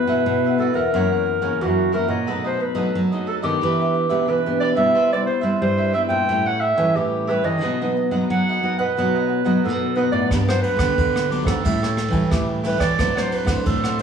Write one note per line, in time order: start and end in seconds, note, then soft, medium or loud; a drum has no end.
0.00 0.24 E3 soft
0.00 0.56 B4 medium
0.07 0.23 B2 medium
0.07 0.54 B3 medium
0.07 0.54 E4 medium
0.07 0.54 F#4 medium
0.07 0.42 B4 medium
0.07 0.42 E5 medium
0.07 0.41 F#5 medium
0.26 0.90 B2 medium
0.26 0.69 B2 loud
0.44 0.60 B4 soft
0.44 0.60 E5 soft
0.44 0.60 F#5 soft
0.58 0.88 B3 soft
0.58 0.88 E4 medium
0.58 0.88 F#4 medium
0.58 0.76 F#4 medium
0.58 0.74 A4 medium
0.58 0.75 B4 soft
0.58 0.75 E5 soft
0.58 0.74 F#5 medium
0.74 0.90 E2 medium
0.74 1.63 A#4 loud
0.74 0.92 B4 medium
0.74 0.92 E5 medium
0.74 0.92 F#5 medium
0.93 1.57 F#2 soft
0.93 1.37 F#2 loud
0.93 1.39 E3 medium
0.93 1.39 A#3 soft
0.93 1.39 C#4 medium
0.93 1.10 E4 medium
0.93 1.10 A#4 medium
0.93 1.10 C#5 medium
0.93 1.10 F#5 medium
1.12 1.25 A#4 soft
1.12 1.25 C#5 soft
1.12 1.26 F#5 medium
1.26 muted cavaquinho stroke soft
1.41 1.60 C#3 medium
1.41 1.88 E3 medium
1.41 1.88 A#3 medium
1.41 1.88 C#4 medium
1.41 1.59 A#4 soft
1.41 1.59 C#5 medium
1.41 1.58 F#5 medium
1.61 2.04 F#2 loud
1.61 2.25 C#3 medium
1.61 1.91 E4 soft
1.61 1.94 F#4 medium
1.61 1.92 A#4 medium
1.61 1.92 C#5 medium
1.61 1.93 F#5 medium
1.92 2.15 E3 medium
1.92 2.16 A#3 medium
1.92 2.16 C#4 medium
1.92 2.09 E4 medium
1.92 2.09 A#4 medium
1.92 2.08 C#5 medium
1.92 2.07 F#5 medium
2.08 2.27 A#2 medium
2.08 2.26 A#4 soft
2.08 2.26 C#5 soft
2.08 2.41 D#5 medium
2.08 2.25 F#5 medium
2.27 2.56 B2 medium
2.27 2.91 B2 medium
2.27 2.73 F#3 medium
2.27 2.73 A3 medium
2.27 2.43 D#4 medium
2.27 2.73 D#4 medium
2.27 2.43 A4 medium
2.27 2.43 B4 medium
2.27 2.43 D#5 medium
2.44 2.59 A4 soft
2.44 2.59 B4 medium
2.44 2.62 C5 medium
2.44 2.60 D#5 medium
2.60 3.01 B4 medium
2.60 muted cavaquinho stroke soft
2.75 2.90 F#3 medium
2.75 3.06 F#3 medium
2.75 3.05 A3 medium
2.75 3.06 D#4 medium
2.75 3.09 A4 medium
2.75 3.09 B4 medium
2.75 3.09 D#5 medium
2.95 3.59 F#2 medium
2.95 3.38 F#3 medium
3.12 3.40 F#3 medium
3.12 3.40 A3 medium
3.12 3.41 D#4 medium
3.12 3.26 A4 soft
3.12 3.26 B4 soft
3.12 3.27 D#5 soft
3.26 3.43 D#4 medium
3.26 3.43 A4 medium
3.26 3.35 A4 medium
3.26 3.42 B4 medium
3.26 3.41 D#5 medium
3.42 3.58 D#3 medium
3.42 4.06 B3 medium
3.42 4.06 D4 medium
3.42 4.06 G4 medium
3.42 4.31 G4 loud
3.42 3.60 A4 medium
3.42 3.60 B4 medium
3.42 3.59 D#5 medium
3.61 4.26 E3 medium
3.61 4.05 E3 loud
3.61 3.77 D4 medium
3.61 3.77 G4 medium
3.61 3.78 B4 medium
3.61 3.78 E5 medium
3.80 3.94 G4 soft
3.80 3.94 B4 soft
3.80 3.95 E5 soft
3.94 muted cavaquinho stroke soft
4.09 4.29 B2 medium
4.09 4.39 B3 medium
4.09 4.39 D4 medium
4.09 4.27 G4 medium
4.09 4.40 G4 medium
4.09 4.26 B4 medium
4.09 4.26 E5 medium
4.27 4.92 B2 medium
4.27 4.72 E3 medium
4.27 4.59 D4 soft
4.27 4.60 G4 soft
4.27 4.60 B4 medium
4.27 4.61 E5 medium
4.46 4.74 B3 medium
4.46 4.74 D4 medium
4.46 4.74 G4 medium
4.60 4.77 D4 medium
4.60 4.76 G4 medium
4.60 4.75 B4 medium
4.60 4.68 D5 loud
4.60 4.74 E5 medium
4.75 4.95 B2 medium
4.75 5.12 G3 medium
4.75 5.12 B3 medium
4.75 5.13 E4 medium
4.75 4.93 G4 soft
4.75 4.93 B4 soft
4.75 4.92 E5 medium
4.75 5.09 E5 medium
4.95 5.59 C3 medium
4.95 5.24 C3 loud
4.95 5.11 G4 medium
4.95 5.11 B4 medium
4.95 5.11 C5 medium
4.95 5.11 E5 medium
5.12 5.41 G3 medium
5.12 5.41 B3 medium
5.12 5.41 E4 medium
5.12 5.26 B4 medium
5.12 5.26 C5 soft
5.12 5.20 D5 medium
5.12 5.26 E5 medium
5.27 5.42 C5 medium
5.27 muted cavaquinho stroke soft
5.41 5.58 G3 medium
5.41 5.89 G3 medium
5.41 5.90 E4 medium
5.41 5.76 B4 medium
5.41 5.77 C5 medium
5.41 5.76 E5 medium
5.62 6.26 G2 medium
5.62 6.05 G3 loud
5.62 5.93 C5 medium
5.78 5.93 B4 soft
5.78 5.92 C5 soft
5.78 5.93 E5 medium
5.93 6.23 G3 medium
5.93 6.24 B3 medium
5.93 6.24 E4 medium
5.93 6.10 G4 soft
5.93 6.08 B4 medium
5.93 6.09 C5 medium
5.93 6.02 E5 medium
5.93 6.07 E5 medium
6.09 6.25 A#2 medium
6.09 6.27 B4 medium
6.09 6.27 C5 medium
6.09 6.26 E5 medium
6.09 6.48 G5 loud
6.29 6.72 A2 loud
6.29 6.94 A2 medium
6.29 6.62 G3 medium
6.29 6.62 C#4 soft
6.29 6.44 E4 medium
6.29 6.62 E4 medium
6.29 6.45 A4 medium
6.29 6.45 C#5 medium
6.29 6.45 G5 medium
6.46 6.60 A4 soft
6.46 6.61 C#5 soft
6.46 6.62 F#5 loud
6.46 6.61 G5 medium
6.60 6.98 E5 medium
6.60 muted cavaquinho stroke soft
6.76 6.97 E3 medium
6.76 7.24 G3 medium
6.76 7.24 C#4 medium
6.76 7.24 E4 medium
6.76 6.94 A4 medium
6.76 6.94 C#5 medium
6.76 6.93 G5 medium
6.96 7.39 A2 loud
6.96 7.61 E3 medium
6.96 7.26 E4 medium
6.96 7.30 G4 medium
6.96 7.27 A4 medium
6.96 7.28 C#5 medium
6.96 7.28 G5 medium
7.27 7.61 G3 medium
7.27 7.61 C#4 medium
7.27 7.44 E4 medium
7.27 7.61 E4 medium
7.27 7.44 A4 medium
7.27 7.46 B4 loud
7.27 7.43 C#5 medium
7.27 7.42 G5 medium
7.43 7.63 E3 medium
7.43 7.61 A4 soft
7.43 7.61 C#5 soft
7.43 8.02 D#5 loud
7.43 7.60 G5 medium
7.62 7.92 B2 medium
7.62 8.27 B2 medium
7.62 7.75 F#3 medium
7.62 7.75 B3 medium
7.62 7.76 D#4 soft
7.62 7.78 F#4 medium
7.62 7.79 B4 medium
7.62 7.79 D#5 medium
7.62 7.79 F#5 medium
7.81 8.09 F#3 medium
7.81 8.09 B3 medium
7.81 8.09 D#4 medium
7.81 7.96 B4 soft
7.81 7.96 D#5 soft
7.81 7.96 F#5 soft
7.96 muted cavaquinho stroke soft
8.11 8.26 F#3 medium
8.11 8.57 F#3 medium
8.11 8.58 B3 medium
8.11 8.58 D#4 medium
8.11 8.46 B4 medium
8.11 8.45 D#5 medium
8.11 8.45 F#5 medium
8.30 8.94 F#2 medium
8.30 8.73 F#3 loud
8.30 8.77 F#5 loud
8.49 8.63 B4 soft
8.49 8.63 D#5 soft
8.49 8.63 F#5 medium
8.63 8.83 F#3 medium
8.63 8.83 B3 medium
8.63 8.83 D#4 medium
8.63 8.79 F#4 medium
8.63 8.79 B4 medium
8.63 8.78 D#5 medium
8.63 8.77 F#5 medium
8.78 8.94 B2 medium
8.78 9.67 B4 medium
8.78 8.96 B4 medium
8.78 8.95 D#5 medium
8.78 8.95 F#5 medium
8.97 9.61 B2 medium
8.97 9.42 F#3 medium
8.97 9.41 F#3 loud
8.97 9.42 B3 soft
8.97 9.42 D#4 medium
8.97 9.13 F#4 medium
8.97 9.13 B4 medium
8.97 9.13 D#5 medium
8.97 9.13 F#5 medium
9.14 9.28 B4 soft
9.14 9.28 D#5 soft
9.14 9.28 F#5 medium
9.29 muted cavaquinho stroke soft
9.45 9.91 F#3 medium
9.45 9.63 F#3 medium
9.45 9.91 B3 medium
9.45 9.91 D#4 medium
9.45 9.63 B4 soft
9.45 9.62 D#5 medium
9.45 9.62 F#5 medium
9.64 10.28 F#2 medium
9.64 10.08 B2 medium
9.64 9.95 F#4 soft
9.64 9.96 A4 medium
9.64 9.96 B4 medium
9.64 9.96 D#5 medium
9.64 9.96 F#5 medium
9.95 10.27 F#3 medium
9.95 10.28 B3 medium
9.95 10.28 D#4 medium
9.95 10.12 F#4 medium
9.95 10.04 B4 medium
9.95 10.13 B4 medium
9.95 10.11 D#5 medium
9.95 10.11 F#5 medium
10.12 10.31 A2 medium
10.12 10.30 B4 soft
10.12 10.28 D5 medium
10.12 10.29 D#5 soft
10.12 10.28 F#5 medium
10.31 10.59 G2 loud
10.31 10.95 G2 medium
10.31 10.41 F#3 medium
10.31 10.42 B3 medium
10.31 10.46 D4 medium
10.31 10.42 D4 medium
10.31 10.47 G4 medium
10.31 10.47 B4 medium
10.31 10.47 F#5 medium
10.31 kick medium
10.31 cross-stick medium
10.31 ride soft
10.48 10.77 F#3 medium
10.48 10.77 B3 medium
10.48 10.77 D4 medium
10.48 10.63 G4 soft
10.48 10.63 B4 medium
10.48 10.61 C5 medium
10.48 10.63 F#5 medium
10.48 cross-stick medium
10.62 11.26 B4 loud
10.62 muted cavaquinho stroke soft
10.62 ride soft
10.77 10.93 D3 medium
10.77 11.25 B3 medium
10.77 11.25 D4 medium
10.77 11.13 B4 medium
10.77 11.12 F#5 medium
10.77 kick medium
10.77 cross-stick medium
10.77 ride soft
10.81 11.13 G4 medium
10.98 11.41 D3 loud
10.98 11.62 D3 medium
10.98 kick medium
10.98 ride soft
11.16 11.31 G4 soft
11.16 11.31 B4 soft
11.16 11.31 F#5 soft
11.16 cross-stick medium
11.30 11.51 F#3 medium
11.30 11.51 B3 medium
11.30 11.47 D4 medium
11.30 11.51 D4 medium
11.30 11.48 G4 medium
11.30 11.46 G4 medium
11.30 11.45 B4 soft
11.30 11.44 F#5 medium
11.30 ride soft
11.43 11.60 G#2 medium
11.43 11.63 G4 soft
11.43 12.31 A4 medium
11.43 11.63 B4 medium
11.43 11.62 F#5 medium
11.43 kick medium
11.43 cross-stick medium
11.43 ride soft
11.64 12.28 A2 medium
11.64 12.08 A2 loud
11.64 11.96 G3 medium
11.64 11.96 C#4 medium
11.64 11.80 E4 medium
11.64 11.96 E4 medium
11.64 11.80 A4 medium
11.64 11.81 C#5 medium
11.64 11.81 G5 medium
11.64 kick medium
11.64 ride medium
11.82 11.96 A4 soft
11.82 11.97 C#5 soft
11.82 11.97 G5 soft
11.82 cross-stick medium
11.97 muted cavaquinho stroke soft
11.97 cross-stick medium
11.97 ride soft
12.10 12.32 E3 medium
12.10 12.59 G3 medium
12.10 12.59 C#4 medium
12.10 12.59 E4 medium
12.10 12.30 A4 soft
12.10 12.29 C#5 medium
12.10 12.29 G5 medium
12.10 kick medium
12.10 ride soft
12.31 12.75 A2 medium
12.31 12.96 E3 medium
12.31 12.62 E4 medium
12.31 12.47 G4 medium
12.31 12.62 A4 medium
12.31 12.63 C#5 medium
12.31 12.64 G5 medium
12.31 kick medium
12.31 cross-stick medium
12.31 ride soft
12.63 12.96 G3 medium
12.63 12.96 C#4 medium
12.63 12.80 E4 medium
12.63 12.96 E4 medium
12.63 12.80 A4 medium
12.63 12.80 B4 medium
12.63 12.78 C#5 medium
12.63 12.78 G5 medium
12.63 ride soft
12.78 12.99 E3 medium
12.78 12.97 A4 soft
12.78 12.96 C#5 soft
12.78 13.20 D5 medium
12.78 12.96 G5 soft
12.78 kick medium
12.78 cross-stick medium
12.78 ride soft
12.98 13.27 A2 medium
12.98 13.63 A2 medium
12.98 13.09 F#3 medium
12.98 13.10 C4 medium
12.98 13.14 D4 medium
12.98 13.10 D4 medium
12.98 13.14 C5 medium
12.98 13.14 D5 medium
12.98 13.14 F#5 medium
12.98 kick medium
12.98 cross-stick medium
12.98 ride soft
13.15 13.45 F#3 medium
13.15 13.45 C4 medium
13.15 13.45 D4 medium
13.15 13.30 C5 soft
13.15 13.34 C5 medium
13.15 13.30 D5 soft
13.15 13.30 F#5 medium
13.15 cross-stick medium
13.31 13.66 B4 medium
13.31 muted cavaquinho stroke soft
13.31 ride soft
13.45 13.61 A2 medium
13.45 13.94 F#3 medium
13.45 13.94 C4 medium
13.45 13.81 C5 medium
13.45 13.80 D5 medium
13.45 13.80 F#5 medium
13.45 kick medium
13.45 cross-stick medium
13.45 ride medium
13.49 13.94 D4 medium
13.66 14.02 A2 loud
13.66 14.02 A2 medium
13.66 13.97 A4 medium
13.66 kick medium
13.66 ride medium
13.84 13.98 C5 soft
13.84 13.99 D5 soft
13.84 13.99 F#5 medium
13.84 cross-stick medium
13.99 14.02 F#3 medium
13.99 14.02 D4 soft
13.99 ride medium